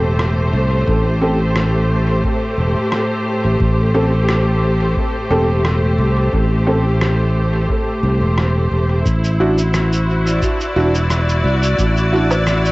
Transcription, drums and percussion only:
0.19 cross-stick medium
0.87 kick loud
1.56 cross-stick medium
2.24 kick loud
2.92 cross-stick medium
3.60 kick loud
4.29 cross-stick medium
4.96 kick loud
5.65 cross-stick medium
6.33 kick loud
7.01 cross-stick medium
7.69 kick loud
8.38 cross-stick medium
9.06 kick loud
9.06 cabasa soft
9.24 cabasa soft
9.58 cabasa soft
9.74 cross-stick medium
9.74 cabasa soft
9.93 cabasa soft
10.27 cabasa soft
10.42 kick loud
10.42 cabasa soft
10.61 cabasa soft
10.95 cabasa soft
11.10 cross-stick medium
11.10 cabasa soft
11.29 cabasa soft
11.63 cabasa soft
11.78 kick loud
11.78 cabasa soft
11.97 cabasa soft
12.31 cabasa soft
12.31 low woodblock medium
12.47 cross-stick medium
12.47 cabasa soft
12.65 cabasa soft

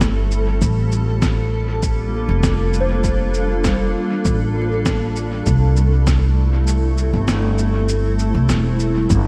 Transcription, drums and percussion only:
0.01 kick medium
0.01 snare medium
0.01 cabasa soft
0.31 cabasa soft
0.62 kick loud
0.62 cabasa soft
0.92 cabasa soft
1.22 kick loud
1.22 snare medium
1.22 cabasa soft
1.83 kick loud
1.83 cabasa soft
2.43 kick medium
2.43 snare medium
2.43 cabasa soft
2.73 cabasa soft
3.04 kick loud
3.04 cabasa soft
3.34 cabasa soft
3.64 kick loud
3.64 snare medium
3.64 cabasa soft
4.25 kick loud
4.25 cabasa soft
4.86 kick medium
4.86 snare medium
4.86 cabasa soft
5.16 cabasa soft
5.46 kick loud
5.46 cabasa soft
5.77 cabasa soft
6.07 kick loud
6.07 snare medium
6.07 cabasa soft
6.67 cabasa medium
6.98 cabasa soft
7.28 snare medium
7.28 cabasa medium
7.58 cabasa soft
7.89 cabasa medium
8.19 cabasa soft
8.49 snare medium
8.49 cabasa soft
8.80 cabasa soft
9.10 kick loud
9.10 cabasa medium

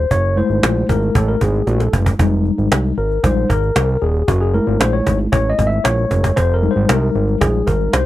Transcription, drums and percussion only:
0.11 cajon bass loud
0.37 cajon slap soft
0.50 cajon slap soft
0.63 cajon slap loud
0.76 cajon slap soft
0.89 cajon bass loud
1.15 cajon bass loud
1.41 cajon bass loud
1.54 cajon slap soft
1.67 cajon slap medium
1.80 cajon slap medium
1.93 cajon bass medium
2.06 cajon bass loud
2.19 cajon bass loud
2.33 cajon slap soft
2.45 cajon slap soft
2.58 cajon slap soft
2.72 cajon slap loud
2.84 cajon slap soft
2.98 cajon slap soft
3.11 cajon slap soft
3.24 cajon bass loud
3.37 cajon slap soft
3.50 cajon bass medium
3.63 cajon slap soft
3.76 cajon slap loud
3.76 cajon slap medium
4.02 cajon slap soft
4.15 cajon slap soft
4.28 cajon bass loud
4.54 cajon slap soft
4.67 cajon slap soft
4.81 cajon slap loud
4.93 cajon slap soft
5.07 cajon bass loud
5.19 cajon slap soft
5.33 cajon bass loud
5.46 cajon slap soft
5.59 cajon bass medium
5.71 cajon slap soft
5.85 cajon slap loud
5.85 cajon slap medium
5.98 cajon slap soft
6.11 cajon bass medium
6.24 cajon bass loud
6.37 cajon bass loud
6.63 cajon slap soft
6.76 cajon slap soft
6.89 cajon slap loud
7.02 cajon slap soft
7.15 cajon slap soft
7.28 cajon slap soft
7.41 cajon bass loud
7.67 cajon bass medium
7.93 cajon slap loud
7.93 cajon slap medium

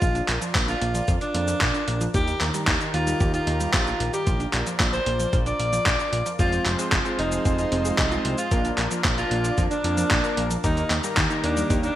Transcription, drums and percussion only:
0.02 kick loud
0.02 closed hi-hat medium
0.02 cabasa medium
0.15 closed hi-hat soft
0.15 cabasa soft
0.28 clap medium
0.28 closed hi-hat loud
0.42 closed hi-hat soft
0.42 cabasa medium
0.55 kick loud
0.55 clap loud
0.55 closed hi-hat medium
0.55 cabasa soft
0.68 closed hi-hat soft
0.68 cabasa soft
0.81 closed hi-hat loud
0.95 closed hi-hat soft
0.95 cabasa medium
1.08 kick loud
1.08 closed hi-hat medium
1.08 cabasa soft
1.21 closed hi-hat soft
1.21 cabasa soft
1.35 closed hi-hat loud
1.48 closed hi-hat soft
1.48 cabasa medium
1.61 kick loud
1.61 clap loud
1.61 closed hi-hat medium
1.61 cabasa soft
1.74 closed hi-hat soft
1.74 cabasa soft
1.88 closed hi-hat loud
2.01 closed hi-hat soft
2.01 cabasa medium
2.14 kick loud
2.14 closed hi-hat medium
2.14 cabasa soft
2.27 closed hi-hat soft
2.27 cabasa soft
2.41 clap medium
2.41 closed hi-hat medium
2.54 closed hi-hat soft
2.54 cabasa medium
2.67 kick loud
2.67 clap loud
2.67 closed hi-hat medium
2.67 cabasa soft
2.81 closed hi-hat soft
2.81 cabasa soft
2.94 closed hi-hat medium
3.07 closed hi-hat soft
3.07 cabasa medium
3.20 kick loud
3.20 closed hi-hat medium
3.20 cabasa soft
3.34 closed hi-hat soft
3.34 cabasa soft
3.47 closed hi-hat medium
3.60 closed hi-hat soft
3.60 cabasa medium
3.74 kick loud
3.74 clap loud
3.74 closed hi-hat medium
3.74 cabasa soft
3.87 closed hi-hat soft
3.87 cabasa soft
4.00 closed hi-hat medium
4.13 closed hi-hat soft
4.13 cabasa medium
4.27 kick loud
4.27 closed hi-hat medium
4.27 cabasa medium
4.40 closed hi-hat soft
4.40 cabasa soft
4.53 clap medium
4.53 closed hi-hat medium
4.67 closed hi-hat soft
4.67 cabasa medium
4.80 kick loud
4.80 clap loud
4.80 closed hi-hat medium
4.80 cabasa soft
4.93 closed hi-hat soft
4.93 cabasa soft
5.06 closed hi-hat medium
5.20 closed hi-hat soft
5.20 cabasa medium
5.33 kick loud
5.33 closed hi-hat medium
5.33 cabasa soft
5.46 closed hi-hat soft
5.46 cabasa soft
5.60 closed hi-hat medium
5.73 closed hi-hat soft
5.73 cabasa medium
5.86 kick loud
5.86 clap loud
5.86 closed hi-hat medium
5.86 cabasa soft
5.99 closed hi-hat soft
5.99 cabasa soft
6.13 closed hi-hat medium
6.26 closed hi-hat soft
6.26 cabasa medium
6.39 kick loud
6.39 closed hi-hat medium
6.39 cabasa medium
6.52 closed hi-hat soft
6.52 cabasa soft
6.66 clap medium
6.66 closed hi-hat medium
6.79 closed hi-hat soft
6.79 cabasa medium
6.92 kick loud
6.92 clap loud
6.92 closed hi-hat medium
6.92 cabasa soft
7.05 closed hi-hat soft
7.05 cabasa soft
7.19 closed hi-hat medium
7.32 closed hi-hat soft
7.32 cabasa medium
7.45 kick loud
7.45 closed hi-hat medium
7.45 cabasa medium
7.59 closed hi-hat soft
7.59 cabasa soft
7.72 closed hi-hat medium
7.85 closed hi-hat soft
7.85 cabasa medium
7.98 kick loud
7.98 clap loud
7.98 closed hi-hat medium
7.98 cabasa soft
8.12 closed hi-hat soft
8.12 cabasa soft
8.25 closed hi-hat loud
8.38 closed hi-hat soft
8.38 cabasa medium
8.51 kick loud
8.51 closed hi-hat medium
8.51 cabasa medium
8.65 closed hi-hat soft
8.65 cabasa soft
8.78 clap medium
8.78 closed hi-hat medium
8.91 closed hi-hat soft
8.91 cabasa medium
9.05 kick loud
9.05 clap loud
9.05 closed hi-hat medium
9.05 cabasa medium
9.18 closed hi-hat soft
9.18 cabasa soft
9.31 closed hi-hat medium
9.44 closed hi-hat soft
9.44 cabasa medium
9.58 kick loud
9.58 closed hi-hat medium
9.58 cabasa medium
9.71 closed hi-hat soft
9.71 cabasa soft
9.84 closed hi-hat loud
9.97 closed hi-hat soft
9.97 cabasa medium
10.11 kick loud
10.11 clap loud
10.11 closed hi-hat medium
10.11 cabasa medium
10.24 closed hi-hat soft
10.24 cabasa soft
10.37 closed hi-hat loud
10.51 closed hi-hat soft
10.51 cabasa medium
10.64 kick loud
10.64 closed hi-hat medium
10.64 cabasa medium
10.77 closed hi-hat soft
10.77 cabasa soft
10.90 clap medium
10.90 closed hi-hat medium
11.04 closed hi-hat soft
11.04 cabasa medium
11.17 kick loud
11.17 clap loud
11.17 closed hi-hat medium
11.17 cabasa soft
11.30 closed hi-hat soft
11.30 cabasa soft
11.44 closed hi-hat medium
11.57 closed hi-hat soft
11.57 cabasa medium
11.70 kick loud
11.70 closed hi-hat medium
11.70 cabasa medium
11.83 closed hi-hat soft
11.83 cabasa soft

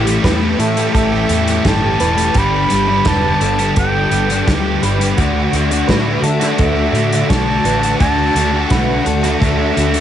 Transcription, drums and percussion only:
0.07 closed hi-hat medium
0.24 kick loud
0.24 snare loud
0.24 closed hi-hat medium
0.60 closed hi-hat medium
0.77 closed hi-hat medium
0.95 kick loud
0.95 closed hi-hat medium
1.29 closed hi-hat medium
1.48 closed hi-hat medium
1.65 kick medium
1.65 snare loud
1.65 closed hi-hat medium
2.00 closed hi-hat medium
2.18 closed hi-hat medium
2.34 kick loud
2.34 closed hi-hat medium
2.70 closed hi-hat medium
3.05 kick loud
3.05 snare loud
3.05 closed hi-hat medium
3.41 closed hi-hat medium
3.59 closed hi-hat medium
3.76 kick loud
3.76 closed hi-hat medium
4.11 closed hi-hat medium
4.30 closed hi-hat medium
4.48 kick loud
4.48 snare loud
4.48 closed hi-hat medium
4.83 closed hi-hat medium
5.01 closed hi-hat medium
5.18 kick loud
5.18 closed hi-hat medium
5.53 closed hi-hat medium
5.71 closed hi-hat medium
5.89 kick loud
5.89 snare loud
5.89 closed hi-hat medium
6.24 closed hi-hat medium
6.41 snare soft
6.41 closed hi-hat medium
6.58 kick loud
6.58 closed hi-hat medium
6.95 closed hi-hat medium
7.13 closed hi-hat medium
7.30 kick medium
7.30 snare medium
7.30 closed hi-hat medium
7.65 closed hi-hat medium
7.83 closed hi-hat medium
8.00 kick loud
8.00 closed hi-hat medium
8.36 closed hi-hat medium
8.70 kick loud
8.70 snare loud
8.70 closed hi-hat medium
9.06 closed hi-hat medium
9.24 closed hi-hat medium
9.42 kick loud
9.42 closed hi-hat medium
9.77 closed hi-hat medium
9.94 closed hi-hat medium

